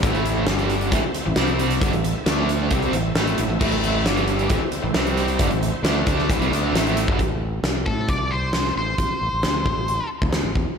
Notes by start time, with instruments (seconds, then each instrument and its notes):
0.03 fingered electric bass A1, overdriven electric guitar A2 E3 A3, tonewheel organ A3 C4 E4 C5 D5, kick, closed hi-hat
0.15 closed hi-hat
0.26 closed hi-hat
0.47 fingered electric bass G1, overdriven electric guitar G2 D3 G3, tonewheel organ D4 G4 D5, snare, closed hi-hat
0.59 closed hi-hat
0.70 closed hi-hat
0.81 closed hi-hat
0.92 fingered electric bass A1, overdriven electric guitar A2 E3, tonewheel organ A3 C4 E4 C5, kick, closed hi-hat
1.04 muted fingered electric bass stroke, muted overdriven electric guitar stroke
1.14 closed hi-hat
1.26 fingered electric bass A1, overdriven electric guitar A2 E3
1.35 fingered electric bass C2, overdriven electric guitar C3 G3 C4, tonewheel organ C4 G4 C5, snare, closed hi-hat
1.48 closed hi-hat
1.59 closed hi-hat
1.71 closed hi-hat
1.80 fingered electric bass G1, overdriven electric guitar G2 D3, tonewheel organ C4 E4 A4 E5, kick, closed hi-hat
1.92 fingered electric bass A1, overdriven electric guitar A2 E3, closed hi-hat
2.04 closed hi-hat
2.24 fingered electric bass D2, overdriven electric guitar D3 A3 D4, tonewheel organ D4 A4 D5, snare, closed hi-hat
2.49 closed hi-hat
2.71 fingered electric bass C2, overdriven electric guitar C3 G3 C4, tonewheel organ C4 E4 A4 E5, kick, closed hi-hat
2.82 closed hi-hat
2.92 fingered electric bass A1, overdriven electric guitar A2 E3, closed hi-hat
3.15 fingered electric bass A1, overdriven electric guitar A2 E3 A3, snare, closed hi-hat
3.27 closed hi-hat
3.38 fingered electric bass A1, overdriven electric guitar A2 E3, closed hi-hat
3.48 fingered electric bass A1, overdriven electric guitar A2 E3
3.60 fingered electric bass A1, overdriven electric guitar A2 E3 A3, kick, crash
3.72 closed hi-hat
3.83 closed hi-hat
4.04 fingered electric bass G1, overdriven electric guitar G2 D3 G3, tonewheel organ D4 G4 D5, snare, closed hi-hat
4.17 closed hi-hat
4.28 closed hi-hat
4.39 closed hi-hat
4.50 fingered electric bass A1, overdriven electric guitar A2 E3, tonewheel organ A3 C4 E4 C5, kick, closed hi-hat
4.61 muted fingered electric bass stroke, muted overdriven electric guitar stroke
4.72 closed hi-hat
4.83 fingered electric bass A1, overdriven electric guitar A2 E3
4.94 fingered electric bass C2, overdriven electric guitar C3 G3 C4, tonewheel organ C4 G4 C5, snare, closed hi-hat
5.07 closed hi-hat
5.17 closed hi-hat
5.28 closed hi-hat
5.39 fingered electric bass G1, overdriven electric guitar G2 D3, tonewheel organ A3 C4 E4 C5, kick, closed hi-hat
5.50 fingered electric bass A1, overdriven electric guitar A2 E3, closed hi-hat
5.63 closed hi-hat
5.83 fingered electric bass D2, overdriven electric guitar D3 A3 D4, snare, closed hi-hat
6.06 fingered electric bass D2, overdriven electric guitar D3 A3 D4, kick, closed hi-hat
6.19 snare
6.29 fingered electric bass A1, overdriven electric guitar A2 E3, kick, closed hi-hat
6.39 fingered electric bass C2, overdriven electric guitar C3 G3, closed hi-hat
6.51 fingered electric bass D2, overdriven electric guitar D3 A3 D4, closed hi-hat
6.73 fingered electric bass A1, overdriven electric guitar A2 E3 A3, snare, closed hi-hat
6.87 closed hi-hat
6.97 closed hi-hat
7.08 fingered electric bass G1, overdriven electric guitar G2 D3, kick
7.19 fingered electric bass A1, kick, closed hi-hat
7.63 fingered electric bass C2, snare, closed hi-hat
7.86 fingered electric bass A2, lead electric guitar A4, kick
8.08 fingered electric bass C2, lead electric guitar D5, kick, closed hi-hat
8.31 lead electric guitar C5
8.53 snare, closed hi-hat
8.65 snare
8.76 fingered electric bass A1, lead electric guitar C5
8.98 fingered electric bass A1, kick, closed hi-hat
9.10 muted fingered electric bass stroke
9.21 fingered electric bass A1
9.33 fingered electric bass A1
9.43 fingered electric bass D2, snare, closed hi-hat
9.65 fingered electric bass A1, kick
9.77 fingered electric bass A1
9.88 closed hi-hat
10.22 fingered electric bass D2, kick
10.33 snare, closed hi-hat
10.43 fingered electric bass A1
10.55 fingered electric bass E2, kick
10.65 muted fingered electric bass stroke